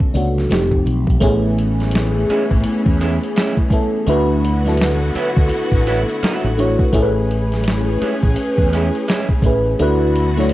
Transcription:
Already playing: fm electric piano D3 A3 B3 C#4 F#4 A4
0.00 muted fretless electric bass stroke, kick
0.14 fretless electric bass C#2, fm electric piano A3 B3 C#4 D4 F#4, closed hi-hat
0.38 snare
0.49 fretless electric bass F1, fm electric piano F3 A3 C4 D#4 G4, snare, closed hi-hat
0.71 kick
0.86 fretless electric bass B1, closed hi-hat
1.07 kick, closed hi-hat
1.20 fretless electric bass A1, string section E3 A3 C#4, fm electric piano A3 B3 C#4 E4 G#4, kick, closed hi-hat
1.58 closed hi-hat
1.80 snare, closed hi-hat
1.91 closed hi-hat
1.95 snare
2.30 clean electric guitar G#3 C#4 E4, closed hi-hat
2.51 fretless electric bass A1, kick
2.63 muted fretless electric bass stroke, closed hi-hat
2.86 fretless electric bass E2, kick
3.01 clean electric guitar G#3 C#4 E4, closed hi-hat
3.23 closed hi-hat
3.36 clean electric guitar G#3 C#4 E4, snare, closed hi-hat
3.57 kick
3.70 fm electric piano A3 B3 C#4 E4 A4, kick, closed hi-hat
4.06 fretless electric bass D2, string section D3 B3 E4 F#4, fm electric piano A3 D4 E4 F#4, closed hi-hat
4.10 fm electric piano B4
4.45 closed hi-hat
4.65 fm electric piano A3 D4 E4 F#4 A4, snare, closed hi-hat
4.77 closed hi-hat
4.81 snare
5.15 clean electric guitar F#3 B3 E4, muted fretless electric bass stroke, closed hi-hat
5.37 fretless electric bass D2, kick
5.49 muted fretless electric bass stroke, closed hi-hat
5.72 fretless electric bass A1, kick
5.87 clean electric guitar F#3 B3 E4, closed hi-hat
6.10 closed hi-hat
6.23 clean electric guitar F#3 B3 E4, muted fretless electric bass stroke, snare, closed hi-hat
6.44 fretless electric bass A1
6.57 fm electric piano A3 D4 E4 F#4 C#5, closed hi-hat
6.79 kick
6.91 fretless electric bass A1, string section A3 C#4 G#4, fm electric piano A3 C#4 E4 G#4, kick, closed hi-hat
6.96 fm electric piano A4
7.02 fm electric piano B4
7.31 closed hi-hat
7.52 snare, closed hi-hat
7.64 closed hi-hat
7.68 snare
8.02 clean electric guitar G#3 C#4 E4, closed hi-hat
8.23 fretless electric bass A1, kick
8.36 muted fretless electric bass stroke, closed hi-hat
8.58 fretless electric bass E2, kick
8.73 clean electric guitar G#3 C#4 E4, closed hi-hat
8.95 closed hi-hat
9.08 clean electric guitar G#3 C#4 E4, snare, closed hi-hat
9.29 kick
9.42 fretless electric bass A1, fm electric piano A3 C#4 E4 G#4, kick, closed hi-hat
9.46 fm electric piano B4
9.78 fretless electric bass D2, string section D3 B3 E4 F#4, fm electric piano A3 D4 E4 F#4 B4, closed hi-hat
10.16 closed hi-hat
10.37 fm electric piano A3 D4 E4 F#4 C#5, snare, closed hi-hat
10.49 closed hi-hat

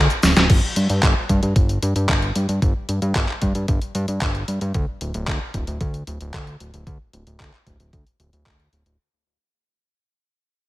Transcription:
0.10 closed hi-hat, cabasa
0.23 analog synth bass D1, snare, open hi-hat, cabasa
0.37 analog synth bass D1, snare, closed hi-hat, cabasa
0.50 analog synth bass G1, kick, closed hi-hat, crash
0.76 analog synth bass G2, closed hi-hat
0.90 analog synth bass G2, closed hi-hat
1.03 analog synth bass G1, kick, clap, closed hi-hat
1.29 analog synth bass G2, kick, closed hi-hat
1.43 analog synth bass G2, closed hi-hat
1.56 analog synth bass G1, kick, closed hi-hat
1.69 closed hi-hat
1.82 analog synth bass G2, closed hi-hat
1.96 analog synth bass G2, closed hi-hat
2.09 analog synth bass G1, kick, clap, closed hi-hat
2.22 closed hi-hat
2.35 analog synth bass G2, closed hi-hat
2.49 analog synth bass G2, closed hi-hat
2.62 analog synth bass G1, kick, closed hi-hat
2.89 analog synth bass G2, closed hi-hat
3.02 analog synth bass G2, closed hi-hat
3.15 analog synth bass G1, kick, clap, closed hi-hat
3.29 clap
3.42 analog synth bass G2, kick, closed hi-hat
3.55 analog synth bass G2, closed hi-hat
3.68 analog synth bass G1, kick, closed hi-hat
3.82 closed hi-hat
3.95 analog synth bass G2, closed hi-hat
4.08 analog synth bass G2, closed hi-hat
4.21 analog synth bass G1, kick, clap, closed hi-hat
4.35 closed hi-hat
4.48 analog synth bass G2, closed hi-hat
4.61 analog synth bass G2, closed hi-hat
4.74 analog synth bass D2, kick, closed hi-hat
5.01 analog synth bass D1, closed hi-hat
5.14 analog synth bass D1, closed hi-hat
5.28 analog synth bass D2, kick, clap, closed hi-hat
5.54 analog synth bass D1, kick, closed hi-hat
5.67 analog synth bass D1, closed hi-hat
5.81 analog synth bass D2, kick, closed hi-hat
5.94 closed hi-hat
6.07 analog synth bass D1, closed hi-hat
6.21 analog synth bass D1, closed hi-hat
6.34 analog synth bass D2, kick, clap, closed hi-hat
6.47 closed hi-hat
6.60 analog synth bass D1, closed hi-hat
6.74 analog synth bass D1, closed hi-hat
6.87 analog synth bass D2, kick, closed hi-hat
7.13 analog synth bass D1, closed hi-hat
7.27 analog synth bass D1, closed hi-hat
7.40 analog synth bass D2, kick, clap, closed hi-hat
7.53 clap
7.66 analog synth bass D1, kick, closed hi-hat
7.80 analog synth bass D1, closed hi-hat
7.93 analog synth bass D2, kick, closed hi-hat
8.07 closed hi-hat
8.20 analog synth bass D1, closed hi-hat
8.33 analog synth bass D1, closed hi-hat
8.46 analog synth bass D2, kick, clap, closed hi-hat
8.60 closed hi-hat
8.73 analog synth bass D1, closed hi-hat
8.86 analog synth bass D1, closed hi-hat

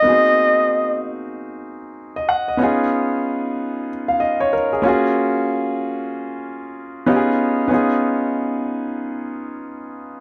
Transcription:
Already playing: flugelhorn D#5
0.02 grand piano A#3 B3 D#4
0.07 grand piano C4 F#4 G#4
2.16 grand piano D#5
2.29 grand piano F#5
2.48 grand piano D#5
2.57 grand piano B3 C#4 D#4
2.62 grand piano F4 G#4
4.08 grand piano F5
4.20 grand piano D#5
4.40 grand piano C#5
4.53 grand piano A#4
4.73 grand piano G#4
4.82 grand piano A#3 C#4 F4
4.87 grand piano F#4 G#4
7.06 grand piano B3 C#4 D#4 F4 G4
7.16 grand piano G#4
7.68 grand piano B3 C#4 D#4
7.72 grand piano F4 G#4

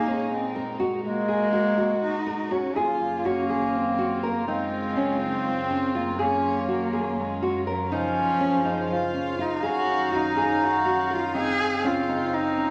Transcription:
Already playing: string section A#2 G#3 D#4, clarinet A#3
0.07 cello C#4, nylon-string guitar G#4
0.32 cello C4
0.56 nylon-string guitar A#4
0.80 nylon-string guitar F#4
1.03 clarinet G#3, cello A#3, string section F#4
1.28 nylon-string guitar G#4
1.53 nylon-string guitar F#4
1.77 nylon-string guitar F#4
2.03 cello D#4
2.27 nylon-string guitar A#4
2.51 cello C#4, nylon-string guitar F#4
2.74 string section F#2 C#3 D#3 F#3 F4, clarinet A#3, cello F4, nylon-string guitar G#4
3.25 cello C#4, nylon-string guitar F#4
3.49 nylon-string guitar G#4
3.75 cello C4
3.99 nylon-string guitar F#4
4.23 cello A#3, nylon-string guitar A#4
4.47 string section C#3 C4, cello G#3, clarinet C4, nylon-string guitar D#4
4.97 nylon-string guitar C#4
5.21 nylon-string guitar D#4
5.48 cello C4
5.70 nylon-string guitar C#4
5.95 cello A#3, nylon-string guitar F4
6.19 string section D#3 F#3 C#4, clarinet A#3, cello C#4, nylon-string guitar G#4
6.68 cello A#3, nylon-string guitar F#4
6.93 nylon-string guitar G#4
7.20 cello G#3
7.42 nylon-string guitar F#4
7.67 cello F#3, nylon-string guitar A#4
7.91 string section C#3 C5 F5, cello F3, clarinet C#4, nylon-string guitar D#4
8.40 nylon-string guitar C#4
8.65 nylon-string guitar D#4
8.92 cello F4
9.14 nylon-string guitar C#4
9.39 cello D#4, nylon-string guitar F4
9.63 string section D#3 F#3 C#4, clarinet D#4, cello F#4, nylon-string guitar G#4
10.12 cello D#4, nylon-string guitar F#4
10.37 nylon-string guitar G#4
10.63 cello F#4
10.85 nylon-string guitar F#4
11.10 cello F4, nylon-string guitar A#4
11.34 string section C#3 C4, clarinet C4, nylon-string guitar D#4, cello G#4
11.84 nylon-string guitar C#4, cello F4
12.09 nylon-string guitar D#4
12.34 cello D#4
12.57 nylon-string guitar C#4

